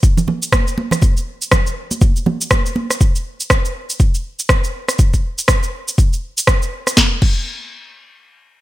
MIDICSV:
0, 0, Header, 1, 2, 480
1, 0, Start_track
1, 0, Tempo, 495868
1, 987, Time_signature, 4, 2, 24, 8
1, 8335, End_track
2, 0, Start_track
2, 0, Title_t, "Drums"
2, 29, Note_on_c, 9, 36, 117
2, 29, Note_on_c, 9, 82, 63
2, 126, Note_off_c, 9, 36, 0
2, 126, Note_off_c, 9, 82, 0
2, 168, Note_on_c, 9, 64, 80
2, 171, Note_on_c, 9, 82, 38
2, 265, Note_off_c, 9, 64, 0
2, 266, Note_on_c, 9, 63, 57
2, 268, Note_off_c, 9, 82, 0
2, 268, Note_on_c, 9, 64, 84
2, 363, Note_off_c, 9, 63, 0
2, 365, Note_off_c, 9, 64, 0
2, 411, Note_on_c, 9, 82, 79
2, 507, Note_on_c, 9, 63, 84
2, 508, Note_off_c, 9, 82, 0
2, 508, Note_on_c, 9, 37, 97
2, 509, Note_on_c, 9, 36, 116
2, 510, Note_on_c, 9, 82, 64
2, 604, Note_off_c, 9, 63, 0
2, 605, Note_off_c, 9, 37, 0
2, 606, Note_off_c, 9, 36, 0
2, 607, Note_off_c, 9, 82, 0
2, 653, Note_on_c, 9, 82, 40
2, 750, Note_off_c, 9, 82, 0
2, 751, Note_on_c, 9, 63, 86
2, 848, Note_off_c, 9, 63, 0
2, 883, Note_on_c, 9, 64, 87
2, 892, Note_on_c, 9, 37, 58
2, 894, Note_on_c, 9, 82, 76
2, 980, Note_off_c, 9, 64, 0
2, 983, Note_on_c, 9, 63, 65
2, 989, Note_off_c, 9, 37, 0
2, 989, Note_off_c, 9, 82, 0
2, 989, Note_on_c, 9, 36, 111
2, 989, Note_on_c, 9, 82, 61
2, 1080, Note_off_c, 9, 63, 0
2, 1086, Note_off_c, 9, 36, 0
2, 1086, Note_off_c, 9, 82, 0
2, 1132, Note_on_c, 9, 82, 37
2, 1229, Note_off_c, 9, 82, 0
2, 1371, Note_on_c, 9, 82, 75
2, 1467, Note_on_c, 9, 37, 99
2, 1468, Note_off_c, 9, 82, 0
2, 1468, Note_on_c, 9, 82, 60
2, 1469, Note_on_c, 9, 36, 106
2, 1472, Note_on_c, 9, 64, 83
2, 1563, Note_off_c, 9, 37, 0
2, 1565, Note_off_c, 9, 82, 0
2, 1566, Note_off_c, 9, 36, 0
2, 1569, Note_off_c, 9, 64, 0
2, 1612, Note_on_c, 9, 82, 37
2, 1709, Note_off_c, 9, 82, 0
2, 1850, Note_on_c, 9, 63, 55
2, 1850, Note_on_c, 9, 82, 75
2, 1946, Note_off_c, 9, 63, 0
2, 1947, Note_off_c, 9, 82, 0
2, 1948, Note_on_c, 9, 82, 57
2, 1950, Note_on_c, 9, 36, 114
2, 1951, Note_on_c, 9, 63, 58
2, 2045, Note_off_c, 9, 82, 0
2, 2047, Note_off_c, 9, 36, 0
2, 2047, Note_off_c, 9, 63, 0
2, 2093, Note_on_c, 9, 82, 35
2, 2189, Note_off_c, 9, 82, 0
2, 2190, Note_on_c, 9, 64, 78
2, 2192, Note_on_c, 9, 63, 66
2, 2286, Note_off_c, 9, 64, 0
2, 2289, Note_off_c, 9, 63, 0
2, 2333, Note_on_c, 9, 82, 76
2, 2427, Note_on_c, 9, 37, 97
2, 2428, Note_off_c, 9, 82, 0
2, 2428, Note_on_c, 9, 82, 61
2, 2429, Note_on_c, 9, 63, 86
2, 2430, Note_on_c, 9, 36, 112
2, 2523, Note_off_c, 9, 37, 0
2, 2525, Note_off_c, 9, 82, 0
2, 2526, Note_off_c, 9, 63, 0
2, 2527, Note_off_c, 9, 36, 0
2, 2574, Note_on_c, 9, 82, 38
2, 2668, Note_on_c, 9, 63, 83
2, 2670, Note_off_c, 9, 82, 0
2, 2765, Note_off_c, 9, 63, 0
2, 2812, Note_on_c, 9, 37, 56
2, 2814, Note_on_c, 9, 82, 73
2, 2909, Note_off_c, 9, 37, 0
2, 2910, Note_off_c, 9, 82, 0
2, 2911, Note_on_c, 9, 36, 109
2, 2911, Note_on_c, 9, 82, 60
2, 3007, Note_off_c, 9, 82, 0
2, 3008, Note_off_c, 9, 36, 0
2, 3055, Note_on_c, 9, 82, 35
2, 3152, Note_off_c, 9, 82, 0
2, 3293, Note_on_c, 9, 82, 72
2, 3388, Note_on_c, 9, 37, 98
2, 3390, Note_off_c, 9, 82, 0
2, 3390, Note_on_c, 9, 36, 103
2, 3390, Note_on_c, 9, 82, 61
2, 3485, Note_off_c, 9, 37, 0
2, 3487, Note_off_c, 9, 36, 0
2, 3487, Note_off_c, 9, 82, 0
2, 3534, Note_on_c, 9, 82, 36
2, 3630, Note_off_c, 9, 82, 0
2, 3772, Note_on_c, 9, 82, 73
2, 3869, Note_off_c, 9, 82, 0
2, 3870, Note_on_c, 9, 36, 109
2, 3870, Note_on_c, 9, 82, 57
2, 3966, Note_off_c, 9, 36, 0
2, 3966, Note_off_c, 9, 82, 0
2, 4013, Note_on_c, 9, 82, 34
2, 4110, Note_off_c, 9, 82, 0
2, 4252, Note_on_c, 9, 82, 73
2, 4347, Note_on_c, 9, 37, 97
2, 4348, Note_off_c, 9, 82, 0
2, 4349, Note_on_c, 9, 82, 59
2, 4350, Note_on_c, 9, 36, 107
2, 4444, Note_off_c, 9, 37, 0
2, 4446, Note_off_c, 9, 82, 0
2, 4447, Note_off_c, 9, 36, 0
2, 4491, Note_on_c, 9, 82, 36
2, 4588, Note_off_c, 9, 82, 0
2, 4728, Note_on_c, 9, 37, 58
2, 4730, Note_on_c, 9, 82, 73
2, 4825, Note_off_c, 9, 37, 0
2, 4827, Note_off_c, 9, 82, 0
2, 4827, Note_on_c, 9, 82, 62
2, 4830, Note_on_c, 9, 36, 112
2, 4924, Note_off_c, 9, 82, 0
2, 4927, Note_off_c, 9, 36, 0
2, 4971, Note_on_c, 9, 82, 35
2, 4972, Note_on_c, 9, 36, 56
2, 5068, Note_off_c, 9, 82, 0
2, 5069, Note_off_c, 9, 36, 0
2, 5210, Note_on_c, 9, 82, 73
2, 5304, Note_on_c, 9, 37, 103
2, 5306, Note_off_c, 9, 82, 0
2, 5306, Note_on_c, 9, 82, 61
2, 5310, Note_on_c, 9, 36, 108
2, 5401, Note_off_c, 9, 37, 0
2, 5403, Note_off_c, 9, 82, 0
2, 5407, Note_off_c, 9, 36, 0
2, 5451, Note_on_c, 9, 82, 37
2, 5547, Note_off_c, 9, 82, 0
2, 5692, Note_on_c, 9, 82, 73
2, 5788, Note_off_c, 9, 82, 0
2, 5790, Note_on_c, 9, 36, 113
2, 5790, Note_on_c, 9, 82, 58
2, 5887, Note_off_c, 9, 36, 0
2, 5887, Note_off_c, 9, 82, 0
2, 5934, Note_on_c, 9, 82, 35
2, 6031, Note_off_c, 9, 82, 0
2, 6171, Note_on_c, 9, 82, 74
2, 6266, Note_on_c, 9, 37, 101
2, 6268, Note_off_c, 9, 82, 0
2, 6268, Note_on_c, 9, 82, 61
2, 6269, Note_on_c, 9, 36, 107
2, 6363, Note_off_c, 9, 37, 0
2, 6365, Note_off_c, 9, 82, 0
2, 6366, Note_off_c, 9, 36, 0
2, 6411, Note_on_c, 9, 82, 38
2, 6507, Note_off_c, 9, 82, 0
2, 6650, Note_on_c, 9, 37, 58
2, 6652, Note_on_c, 9, 82, 74
2, 6746, Note_off_c, 9, 37, 0
2, 6746, Note_on_c, 9, 38, 81
2, 6748, Note_off_c, 9, 82, 0
2, 6749, Note_on_c, 9, 36, 109
2, 6843, Note_off_c, 9, 38, 0
2, 6846, Note_off_c, 9, 36, 0
2, 6987, Note_on_c, 9, 49, 85
2, 6989, Note_on_c, 9, 36, 105
2, 7084, Note_off_c, 9, 49, 0
2, 7085, Note_off_c, 9, 36, 0
2, 8335, End_track
0, 0, End_of_file